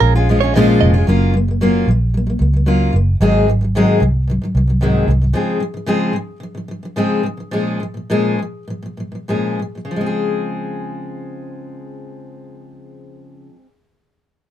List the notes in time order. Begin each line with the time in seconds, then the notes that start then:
Already playing: G#3 C#4 F4
0.00 A#1 A#4
0.15 G#3 C#4 F4
0.29 F3 G#3 C#4 F4
0.41 G#3 C#4 F4 C#5
0.54 A#2 F3 G#3 C#4 F4 D#5
0.81 F1 D#5
0.94 C#4 F4
0.98 G#3
1.07 F#1 F#3 A#3 C#4 F4
1.34 F#3 A#3
1.48 F#3 A#3
1.61 F#3 A#3 C#4 F4
1.87 A#1 F#3 A#3
2.14 F#3 A#3
2.27 F#3 A#3
2.39 C#2 F#3 A#3
2.53 F#3 A#3
2.66 F#3 A#3 C#4 F4
2.93 F#1 F#3 A#3
3.20 G#1 G#2 D#3 F#3 G#3 C4 G#4
3.48 G#2 D#3 F#3
3.61 G#2 D#3 F#3
3.75 G#2 D#3 F#3 G#3 C4 G#4
4.00 C2 G#2 D#3 F#3
4.27 G#2 D#3 F#3
4.42 G#2 D#3 F#3
4.55 C2 G#2 D#3 F#3
4.67 G#2 D#3 F#3
4.81 G#2 D#3 F#3 G#3 C4 G#4
5.08 C2 G#2 D#3 F#3
5.22 G#2 D#3 F#3
5.33 C#3 F3 G#3 C4 G#4
5.60 C#3 F3
5.74 C#3 F3
5.86 C#3 F3 G#3 C4 G#4
6.13 C#3 F3
6.40 C#3 F3
6.55 C#3 F3
6.68 C#3 F3
6.83 C#3 F3
6.96 C#3 F3 G#3 C4 G#4
7.23 C#3 F3
7.37 C#3 F3
7.51 A#2 F3 G#3 C#4 G#4
7.80 A#2 F3
7.94 A#2 F3
8.10 A#2 F3 G#3 C#4 G#4
8.39 A#2 F3
8.68 A#2 F3
8.83 A#2 F3
8.97 A#2 F3
9.12 A#2 F3
9.28 A#2 F3 G#3 C#4 G#4
9.59 A#2 F3
9.75 A#2 F3
9.85 C#3
9.91 F3
9.96 G#3
10.01 C4
10.06 G#4